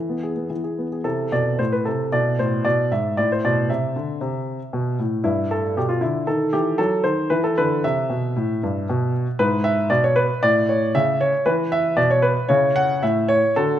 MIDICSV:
0, 0, Header, 1, 2, 480
1, 0, Start_track
1, 0, Key_signature, 0, "minor"
1, 0, Tempo, 539084
1, 941, Time_signature, 4, 2, 24, 8
1, 2362, Tempo, 518583
1, 8590, Key_signature, 3, "major"
1, 12675, End_track
2, 0, Start_track
2, 0, Title_t, "Grand piano"
2, 0, Program_c, 0, 0
2, 0, Note_on_c, 0, 52, 49
2, 0, Note_on_c, 0, 76, 55
2, 82, Note_on_c, 0, 59, 34
2, 141, Control_c, 0, 64, 127
2, 206, Note_on_c, 0, 68, 40
2, 278, Note_off_c, 0, 59, 0
2, 328, Note_on_c, 0, 59, 37
2, 402, Note_off_c, 0, 68, 0
2, 430, Note_off_c, 0, 52, 0
2, 444, Note_on_c, 0, 52, 46
2, 447, Note_off_c, 0, 76, 0
2, 460, Control_c, 0, 64, 0
2, 524, Note_off_c, 0, 59, 0
2, 569, Note_on_c, 0, 68, 33
2, 697, Note_on_c, 0, 59, 36
2, 769, Note_off_c, 0, 68, 0
2, 822, Note_on_c, 0, 68, 39
2, 893, Note_off_c, 0, 59, 0
2, 923, Note_off_c, 0, 52, 0
2, 928, Note_on_c, 0, 69, 71
2, 931, Note_on_c, 0, 48, 58
2, 933, Note_on_c, 0, 64, 41
2, 942, Note_off_c, 0, 68, 0
2, 1119, Control_c, 0, 64, 127
2, 1163, Note_off_c, 0, 48, 0
2, 1173, Note_off_c, 0, 69, 0
2, 1174, Note_on_c, 0, 47, 59
2, 1177, Note_on_c, 0, 74, 73
2, 1403, Note_off_c, 0, 47, 0
2, 1414, Note_on_c, 0, 72, 65
2, 1416, Note_off_c, 0, 74, 0
2, 1416, Note_on_c, 0, 45, 54
2, 1431, Control_c, 0, 64, 0
2, 1535, Note_off_c, 0, 72, 0
2, 1535, Note_on_c, 0, 71, 64
2, 1643, Note_off_c, 0, 45, 0
2, 1650, Note_on_c, 0, 69, 64
2, 1655, Note_off_c, 0, 71, 0
2, 1657, Note_on_c, 0, 48, 53
2, 1853, Note_off_c, 0, 64, 0
2, 1882, Note_off_c, 0, 48, 0
2, 1890, Note_off_c, 0, 69, 0
2, 1892, Note_on_c, 0, 74, 80
2, 1895, Note_on_c, 0, 47, 60
2, 1896, Note_on_c, 0, 64, 39
2, 2074, Control_c, 0, 64, 127
2, 2117, Note_off_c, 0, 47, 0
2, 2127, Note_off_c, 0, 74, 0
2, 2128, Note_on_c, 0, 45, 59
2, 2130, Note_on_c, 0, 72, 69
2, 2350, Note_off_c, 0, 45, 0
2, 2356, Note_on_c, 0, 74, 82
2, 2359, Note_on_c, 0, 47, 60
2, 2363, Note_off_c, 0, 72, 0
2, 2369, Control_c, 0, 64, 0
2, 2591, Note_off_c, 0, 47, 0
2, 2602, Note_off_c, 0, 74, 0
2, 2606, Note_on_c, 0, 44, 53
2, 2607, Note_on_c, 0, 76, 74
2, 2810, Note_off_c, 0, 64, 0
2, 2834, Note_off_c, 0, 44, 0
2, 2844, Note_on_c, 0, 74, 80
2, 2846, Note_off_c, 0, 76, 0
2, 2847, Note_on_c, 0, 64, 38
2, 2849, Note_on_c, 0, 45, 57
2, 2964, Note_off_c, 0, 74, 0
2, 2980, Note_on_c, 0, 72, 67
2, 3026, Control_c, 0, 64, 127
2, 3073, Note_off_c, 0, 45, 0
2, 3091, Note_off_c, 0, 72, 0
2, 3096, Note_on_c, 0, 47, 62
2, 3097, Note_on_c, 0, 74, 76
2, 3316, Note_off_c, 0, 47, 0
2, 3328, Note_off_c, 0, 74, 0
2, 3328, Note_on_c, 0, 76, 71
2, 3333, Control_c, 0, 64, 0
2, 3334, Note_on_c, 0, 48, 55
2, 3555, Note_off_c, 0, 48, 0
2, 3571, Note_on_c, 0, 50, 52
2, 3793, Note_off_c, 0, 50, 0
2, 3804, Note_on_c, 0, 48, 63
2, 4148, Note_off_c, 0, 48, 0
2, 4286, Note_on_c, 0, 47, 62
2, 4513, Note_off_c, 0, 47, 0
2, 4525, Note_off_c, 0, 76, 0
2, 4527, Note_on_c, 0, 45, 57
2, 4730, Note_off_c, 0, 64, 0
2, 4755, Note_on_c, 0, 64, 73
2, 4756, Note_off_c, 0, 45, 0
2, 4756, Note_on_c, 0, 43, 67
2, 4927, Control_c, 0, 64, 127
2, 5003, Note_off_c, 0, 64, 0
2, 5007, Note_on_c, 0, 69, 74
2, 5107, Note_off_c, 0, 43, 0
2, 5246, Note_off_c, 0, 69, 0
2, 5246, Note_on_c, 0, 47, 54
2, 5250, Note_on_c, 0, 67, 62
2, 5255, Control_c, 0, 64, 0
2, 5356, Note_on_c, 0, 65, 66
2, 5366, Note_off_c, 0, 67, 0
2, 5468, Note_off_c, 0, 47, 0
2, 5469, Note_on_c, 0, 64, 68
2, 5470, Note_on_c, 0, 50, 54
2, 5477, Note_off_c, 0, 65, 0
2, 5697, Note_off_c, 0, 50, 0
2, 5708, Note_off_c, 0, 64, 0
2, 5711, Note_on_c, 0, 69, 78
2, 5713, Note_on_c, 0, 63, 37
2, 5715, Note_on_c, 0, 51, 60
2, 5899, Control_c, 0, 64, 127
2, 5939, Note_off_c, 0, 51, 0
2, 5949, Note_off_c, 0, 69, 0
2, 5949, Note_on_c, 0, 67, 73
2, 5954, Note_on_c, 0, 52, 63
2, 6178, Note_off_c, 0, 52, 0
2, 6183, Note_on_c, 0, 69, 84
2, 6186, Note_on_c, 0, 54, 65
2, 6187, Note_off_c, 0, 67, 0
2, 6195, Control_c, 0, 64, 0
2, 6412, Note_off_c, 0, 54, 0
2, 6420, Note_on_c, 0, 72, 80
2, 6422, Note_off_c, 0, 69, 0
2, 6427, Note_on_c, 0, 51, 63
2, 6626, Note_off_c, 0, 63, 0
2, 6653, Note_off_c, 0, 51, 0
2, 6661, Note_off_c, 0, 72, 0
2, 6663, Note_on_c, 0, 71, 77
2, 6665, Note_on_c, 0, 52, 68
2, 6665, Note_on_c, 0, 64, 43
2, 6785, Note_off_c, 0, 71, 0
2, 6791, Note_on_c, 0, 69, 76
2, 6876, Control_c, 0, 64, 127
2, 6898, Note_off_c, 0, 52, 0
2, 6912, Note_off_c, 0, 69, 0
2, 6919, Note_on_c, 0, 71, 81
2, 6921, Note_on_c, 0, 50, 63
2, 7151, Note_off_c, 0, 50, 0
2, 7162, Note_off_c, 0, 71, 0
2, 7164, Control_c, 0, 64, 0
2, 7165, Note_on_c, 0, 76, 87
2, 7166, Note_on_c, 0, 48, 60
2, 7392, Note_off_c, 0, 48, 0
2, 7402, Note_on_c, 0, 47, 55
2, 7629, Note_off_c, 0, 47, 0
2, 7648, Note_on_c, 0, 45, 67
2, 7871, Note_off_c, 0, 45, 0
2, 7898, Note_on_c, 0, 43, 60
2, 8114, Note_off_c, 0, 43, 0
2, 8140, Note_on_c, 0, 47, 72
2, 8356, Note_off_c, 0, 76, 0
2, 8473, Note_off_c, 0, 47, 0
2, 8554, Note_off_c, 0, 64, 0
2, 8599, Note_on_c, 0, 71, 88
2, 8600, Note_on_c, 0, 44, 72
2, 8601, Note_on_c, 0, 64, 43
2, 8756, Control_c, 0, 64, 127
2, 8830, Note_on_c, 0, 76, 91
2, 8833, Note_off_c, 0, 71, 0
2, 8940, Note_off_c, 0, 44, 0
2, 9068, Note_off_c, 0, 76, 0
2, 9068, Note_on_c, 0, 74, 87
2, 9070, Note_on_c, 0, 47, 67
2, 9078, Control_c, 0, 64, 0
2, 9188, Note_off_c, 0, 74, 0
2, 9199, Note_on_c, 0, 73, 80
2, 9308, Note_on_c, 0, 71, 85
2, 9313, Note_off_c, 0, 73, 0
2, 9416, Note_off_c, 0, 47, 0
2, 9518, Note_off_c, 0, 64, 0
2, 9550, Note_off_c, 0, 71, 0
2, 9557, Note_on_c, 0, 74, 101
2, 9560, Note_on_c, 0, 64, 48
2, 9564, Note_on_c, 0, 45, 68
2, 9738, Control_c, 0, 64, 127
2, 9796, Note_off_c, 0, 74, 0
2, 9801, Note_on_c, 0, 73, 70
2, 9907, Note_off_c, 0, 45, 0
2, 10038, Note_off_c, 0, 73, 0
2, 10040, Note_on_c, 0, 76, 97
2, 10041, Note_on_c, 0, 49, 73
2, 10042, Control_c, 0, 64, 0
2, 10275, Note_off_c, 0, 76, 0
2, 10279, Note_on_c, 0, 73, 84
2, 10381, Note_off_c, 0, 49, 0
2, 10477, Note_off_c, 0, 64, 0
2, 10511, Note_on_c, 0, 71, 85
2, 10512, Note_off_c, 0, 73, 0
2, 10513, Note_on_c, 0, 52, 76
2, 10514, Note_on_c, 0, 64, 47
2, 10663, Control_c, 0, 64, 127
2, 10748, Note_off_c, 0, 71, 0
2, 10754, Note_on_c, 0, 76, 95
2, 10856, Note_off_c, 0, 52, 0
2, 10983, Note_on_c, 0, 47, 65
2, 10983, Note_on_c, 0, 74, 92
2, 10991, Note_off_c, 0, 76, 0
2, 11000, Control_c, 0, 64, 0
2, 11106, Note_off_c, 0, 74, 0
2, 11111, Note_on_c, 0, 73, 82
2, 11221, Note_on_c, 0, 71, 81
2, 11230, Note_off_c, 0, 73, 0
2, 11332, Note_off_c, 0, 47, 0
2, 11436, Note_off_c, 0, 64, 0
2, 11463, Note_on_c, 0, 73, 89
2, 11466, Note_off_c, 0, 71, 0
2, 11471, Note_on_c, 0, 64, 46
2, 11473, Note_on_c, 0, 49, 76
2, 11635, Control_c, 0, 64, 127
2, 11709, Note_off_c, 0, 73, 0
2, 11714, Note_on_c, 0, 78, 100
2, 11821, Note_off_c, 0, 49, 0
2, 11956, Note_off_c, 0, 78, 0
2, 11964, Note_on_c, 0, 76, 82
2, 11968, Control_c, 0, 64, 0
2, 11968, Note_on_c, 0, 45, 72
2, 12203, Note_off_c, 0, 76, 0
2, 12203, Note_on_c, 0, 73, 97
2, 12312, Note_off_c, 0, 45, 0
2, 12403, Note_off_c, 0, 64, 0
2, 12442, Note_off_c, 0, 73, 0
2, 12459, Note_on_c, 0, 50, 68
2, 12461, Note_on_c, 0, 69, 91
2, 12463, Note_on_c, 0, 66, 49
2, 12645, Control_c, 0, 64, 127
2, 12675, Note_off_c, 0, 50, 0
2, 12675, Note_off_c, 0, 66, 0
2, 12675, Note_off_c, 0, 69, 0
2, 12675, End_track
0, 0, End_of_file